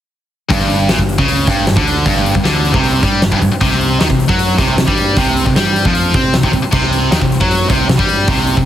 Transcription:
0.49 0.87 G1 loud
0.49 0.88 G2 loud
0.49 kick loud
0.49 open hi-hat medium
0.60 snare soft
0.70 open hi-hat medium
0.89 0.98 A#1 medium
0.89 0.99 A#2 loud
0.89 snare loud
0.89 open hi-hat medium
0.99 1.17 G1 medium
0.99 1.15 G2 medium
0.99 kick medium
1.09 open hi-hat medium
1.18 1.46 C#2 medium
1.18 1.47 C#3 loud
1.18 kick medium
1.28 open hi-hat medium
1.47 1.66 G1 medium
1.47 1.66 G2 loud
1.47 kick loud
1.47 open hi-hat medium
1.67 1.76 G1 medium
1.67 1.77 G2 medium
1.67 snare loud
1.67 open hi-hat medium
1.76 2.04 D2 medium
1.76 2.05 D3 loud
1.76 kick loud
1.87 open hi-hat medium
2.05 2.33 G1 medium
2.05 2.34 G2 loud
2.05 kick loud
2.05 open hi-hat medium
2.16 snare soft
2.26 open hi-hat medium
2.35 2.44 G1 medium
2.35 2.45 G2 medium
2.35 kick medium
2.44 2.72 D2 loud
2.44 2.72 D3 loud
2.44 snare loud
2.44 open hi-hat medium
2.65 open hi-hat medium
2.73 3.01 C2 loud
2.73 3.02 C3 loud
2.73 kick loud
2.83 open hi-hat medium
3.03 3.21 G2 medium
3.03 3.22 G3 loud
3.03 kick loud
3.03 open hi-hat medium
3.21 3.31 G1 medium
3.21 3.30 G2 medium
3.21 snare loud
3.21 open hi-hat medium
3.31 3.41 G1 loud
3.31 3.40 G2 loud
3.31 kick loud
3.41 3.51 G1 medium
3.41 3.50 G2 medium
3.41 kick medium
3.41 open hi-hat medium
3.52 muted distorted electric guitar stroke medium
3.52 muted picked electric bass stroke soft
3.52 muted overdriven electric guitar stroke medium
3.61 3.98 C2 medium
3.61 4.00 C3 loud
3.61 kick loud
3.61 open hi-hat medium
3.71 snare soft
3.81 open hi-hat medium
4.00 4.10 D#2 medium
4.00 4.09 D#3 loud
4.00 snare loud
4.00 open hi-hat medium
4.09 4.28 C2 medium
4.09 4.25 C3 medium
4.09 kick medium
4.20 open hi-hat medium
4.28 4.56 F#2 loud
4.28 4.57 F#3 medium
4.28 kick loud
4.39 open hi-hat medium
4.58 4.77 C2 medium
4.58 4.76 C3 loud
4.58 kick loud
4.58 open hi-hat medium
4.77 4.87 C2 medium
4.77 4.87 C3 medium
4.77 snare loud
4.77 open hi-hat medium
4.87 5.15 G2 loud
4.87 5.16 G3 loud
4.87 kick loud
4.97 open hi-hat medium
5.16 5.44 C2 loud
5.16 5.45 C3 loud
5.16 kick loud
5.16 open hi-hat medium
5.37 open hi-hat medium
5.46 5.55 C2 medium
5.46 5.56 C3 medium
5.46 kick medium
5.55 5.83 G2 medium
5.55 5.85 G3 loud
5.55 snare loud
5.55 open hi-hat medium
5.76 open hi-hat medium
5.85 6.12 F2 medium
5.85 6.14 F3 loud
5.85 kick loud
5.95 open hi-hat medium
6.14 6.32 C3 loud
6.14 6.34 C4 loud
6.14 kick loud
6.14 open hi-hat medium
6.33 6.43 C2 medium
6.33 6.42 C3 medium
6.33 snare loud
6.33 open hi-hat medium
6.43 6.53 C2 medium
6.43 6.52 C3 loud
6.43 kick loud
6.53 6.62 C2 medium
6.53 6.61 C3 medium
6.53 kick medium
6.53 open hi-hat medium
6.62 muted distorted electric guitar stroke medium
6.62 muted picked electric bass stroke soft
6.62 muted overdriven electric guitar stroke medium
6.72 7.09 C2 medium
6.72 7.11 C3 loud
6.72 kick loud
6.72 crash medium
6.83 snare soft
6.92 open hi-hat medium
7.11 7.20 D#2 medium
7.11 7.21 D#3 loud
7.11 snare loud
7.11 open hi-hat medium
7.21 7.39 C2 medium
7.21 7.37 C3 medium
7.21 kick medium
7.32 open hi-hat medium
7.40 7.68 F#2 medium
7.40 7.69 F#3 medium
7.40 kick loud
7.51 open hi-hat medium
7.69 7.88 C2 loud
7.69 7.89 C3 loud
7.69 kick loud
7.69 open hi-hat medium
7.89 7.98 C2 medium
7.89 7.99 C3 medium
7.89 snare loud
7.89 open hi-hat medium
7.99 8.26 G2 medium
7.99 8.28 G3 loud
7.99 kick loud
8.08 open hi-hat medium
8.27 8.55 C2 medium
8.27 8.56 C3 loud
8.27 kick loud
8.27 open hi-hat medium
8.38 snare soft
8.47 open hi-hat medium
8.57 8.65 C2 medium
8.57 8.65 C3 medium
8.57 kick medium

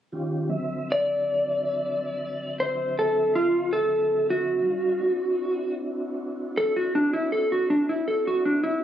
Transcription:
0.12 0.50 D#3 soft
0.12 0.50 C#4 soft
0.12 0.49 F4 medium
0.12 0.50 G4 medium
0.49 4.60 D3 medium
0.49 4.60 F#3 medium
0.49 4.60 C4 medium
0.49 4.60 E5 medium
0.92 2.55 D5 medium
2.60 2.95 C5 medium
2.99 3.33 A4 medium
3.35 3.70 F4 medium
3.73 4.26 A4 medium
4.30 5.75 F#4 medium
4.62 5.01 G3 medium
4.62 5.01 C#4 medium
4.62 5.01 D#4 medium
4.62 5.01 F5 medium
5.01 8.84 C4 medium
5.01 8.84 D4 medium
5.01 8.84 E4 medium
5.01 8.84 F#4 medium
6.57 6.73 A4 medium
6.76 6.92 F#4 medium
6.95 7.11 D4 medium
7.13 7.29 E4 medium
7.32 7.48 A4 medium
7.52 7.68 F#4 medium
7.70 7.86 D4 medium
7.89 8.05 E4 medium
8.08 8.24 A4 medium
8.27 8.43 F#4 medium
8.45 8.61 D4 medium
8.64 8.80 E4 medium

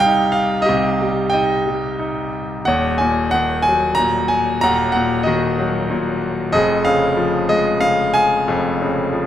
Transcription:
0.00 0.65 C2 medium
0.00 0.65 C3 medium
0.00 1.02 G3 medium
0.00 0.06 D#4 medium
0.00 0.66 G4 medium
0.00 0.62 D#5 loud
0.00 0.32 F5 loud
0.00 0.35 G5 loud
0.06 1.31 D#4 medium
0.32 0.68 F5 medium
0.62 1.61 G4 medium
0.62 1.32 D#5 medium
0.69 2.64 C2 medium
0.69 2.64 C3 medium
1.02 1.65 G3 medium
1.30 2.30 D#5 medium
1.30 2.28 G5 medium
1.35 1.98 D#4 medium
1.66 2.65 G3 soft
1.99 2.66 D#4 soft
2.65 4.60 D#1 medium
2.65 4.60 D#2 medium
2.65 3.63 C#5 medium
2.65 3.01 F#5 loud
2.98 3.98 A#2 medium
2.98 3.34 G#5 medium
3.31 4.60 D#3 medium
3.31 3.67 F#5 loud
3.62 3.98 G#5 loud
3.69 4.93 F#3 medium
3.95 4.27 A#5 loud
3.99 4.95 A#2 soft
4.28 4.63 G#5 medium
4.61 6.51 D#1 medium
4.61 6.51 D#2 medium
4.61 4.91 F#5 medium
4.61 4.92 A#5 loud
4.92 5.27 F#5 medium
4.96 5.89 A#2 medium
5.23 6.51 D#3 medium
5.23 6.18 F#4 medium
5.23 6.17 D#5 medium
5.58 6.52 F#3 medium
5.91 6.53 A#2 medium
6.52 8.43 F1 medium
6.52 8.43 F2 medium
6.52 7.46 G#4 medium
6.52 6.83 D#5 loud
6.85 7.79 C#3 medium
6.85 7.51 F5 medium
7.17 8.43 F3 medium
7.49 8.76 G#3 medium
7.49 7.83 D#5 medium
7.81 8.80 C#3 medium
7.81 8.13 F5 loud
8.14 9.27 F5 medium
8.14 9.27 G#5 loud
8.48 9.27 F1 medium
8.48 9.27 F2 medium
8.82 9.27 C#3 medium
9.13 9.27 F3 medium

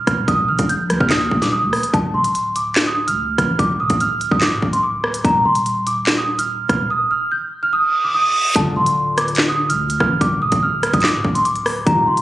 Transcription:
0.07 0.27 D#1 loud
0.07 0.26 F6 medium
0.07 kick loud
0.07 cross-stick medium
0.07 closed hi-hat medium
0.28 0.50 D#1 loud
0.28 0.46 D#6 medium
0.28 kick loud
0.28 closed hi-hat medium
0.48 0.58 A#1 loud
0.48 0.67 F6 medium
0.59 0.92 A#1 loud
0.59 kick loud
0.59 closed hi-hat medium
0.69 0.99 G6 medium
0.69 closed hi-hat medium
0.90 1.00 D#2 loud
0.90 cross-stick medium
0.90 closed hi-hat medium
1.00 1.30 D#2 loud
1.00 1.10 F6 medium
1.00 kick loud
1.10 1.40 D#6 medium
1.10 snare loud
1.10 clap medium
1.10 closed hi-hat medium
1.31 1.64 D#1 loud
1.31 kick medium
1.42 1.51 D6 medium
1.42 snare medium
1.42 closed hi-hat medium
1.52 1.91 D#6 medium
1.63 1.72 D#2 loud
1.73 cross-stick medium
1.73 open hi-hat medium
1.83 closed hi-hat medium
1.94 2.13 D1 loud
1.94 2.12 A5 loud
1.94 kick loud
1.94 closed hi-hat medium
2.14 3.09 D1 loud
2.14 2.53 C6 medium
2.24 closed hi-hat medium
2.35 closed hi-hat medium
2.56 2.85 D6 medium
2.56 closed hi-hat medium
2.76 snare loud
2.76 clap medium
2.76 closed hi-hat medium
2.87 3.05 D#6 medium
3.07 3.37 D2 loud
3.07 3.37 F6 medium
3.07 closed hi-hat medium
3.38 3.58 A1 loud
3.38 3.57 F6 medium
3.38 kick medium
3.38 cross-stick medium
3.38 closed hi-hat medium
3.59 3.81 D1 loud
3.59 3.77 D6 medium
3.59 kick loud
3.59 closed hi-hat medium
3.80 3.90 F1 loud
3.80 3.98 D#6 medium
3.90 4.30 D1 loud
3.90 kick loud
3.90 closed hi-hat medium
4.00 4.30 F6 medium
4.00 closed hi-hat medium
4.21 closed hi-hat medium
4.31 4.54 D1 loud
4.31 4.41 D#6 medium
4.31 kick loud
4.41 4.71 D6 medium
4.41 snare loud
4.41 clap medium
4.41 closed hi-hat medium
4.52 4.62 C1 loud
4.62 5.22 D1 loud
4.62 kick medium
4.73 4.82 C6 medium
4.73 closed hi-hat medium
4.83 5.22 D6 medium
5.04 cross-stick medium
5.14 closed hi-hat medium
5.25 5.44 D#1 loud
5.25 5.43 A#5 medium
5.25 kick loud
5.25 closed hi-hat medium
5.45 6.65 D#1 loud
5.45 5.84 C6 medium
5.55 closed hi-hat medium
5.66 closed hi-hat medium
5.87 6.16 D6 medium
5.87 closed hi-hat medium
6.07 snare loud
6.07 clap loud
6.07 closed hi-hat medium
6.18 6.36 D#6 medium
6.39 6.68 F6 medium
6.39 closed hi-hat medium
6.69 6.89 D#1 loud
6.69 6.88 F6 medium
6.69 kick loud
6.69 cross-stick medium
6.69 closed hi-hat medium
6.90 7.09 D#6 medium
7.11 7.29 F6 medium
7.32 7.61 G6 medium
7.63 7.72 F6 medium
7.73 8.02 D#6 medium
7.73 reverse cymbal medium
8.04 8.13 D6 medium
8.14 8.53 D#6 medium
8.55 8.75 D1 loud
8.55 11.92 D3 medium
8.55 11.83 D4 medium
8.55 11.83 F4 medium
8.55 11.84 A4 medium
8.55 8.74 A5 loud
8.55 kick loud
8.55 closed hi-hat medium
8.76 9.71 D1 loud
8.76 9.15 C6 medium
8.86 closed hi-hat medium
9.18 9.47 D6 medium
9.18 cross-stick loud
9.18 closed hi-hat medium
9.28 closed hi-hat soft
9.35 snare loud
9.35 clap loud
9.35 closed hi-hat medium
9.42 closed hi-hat medium
9.49 9.67 D#6 medium
9.69 9.99 D2 loud
9.69 9.98 F6 medium
9.69 closed hi-hat medium
9.90 closed hi-hat medium
10.00 10.20 A1 loud
10.00 10.19 F6 medium
10.00 kick loud
10.00 cross-stick medium
10.21 10.43 D1 loud
10.21 10.39 D6 loud
10.21 kick loud
10.21 closed hi-hat medium
10.42 10.52 F1 loud
10.42 10.60 D#6 medium
10.52 10.92 D1 loud
10.52 kick loud
10.52 closed hi-hat loud
10.63 10.92 F6 medium
10.83 cross-stick loud
10.83 closed hi-hat medium
10.93 11.16 D1 loud
10.93 11.03 D#6 medium
10.93 kick loud
10.93 closed hi-hat medium
11.00 11.33 D6 medium
11.00 snare loud
11.00 clap loud
11.00 closed hi-hat medium
11.07 closed hi-hat medium
11.14 11.24 C1 loud
11.25 11.84 D1 loud
11.25 kick medium
11.35 11.44 C6 medium
11.35 closed hi-hat medium
11.45 11.84 D6 medium
11.45 closed hi-hat medium
11.56 closed hi-hat medium
11.66 cross-stick loud
11.66 open hi-hat medium
11.86 12.06 D#1 loud
11.86 12.22 D#3 medium
11.86 12.22 D#4 medium
11.86 12.22 F4 medium
11.86 12.22 G4 medium
11.86 12.05 A#5 loud
11.86 kick loud
11.86 closed hi-hat medium
12.07 12.22 D#1 loud
12.07 12.22 C6 medium
12.17 closed hi-hat medium

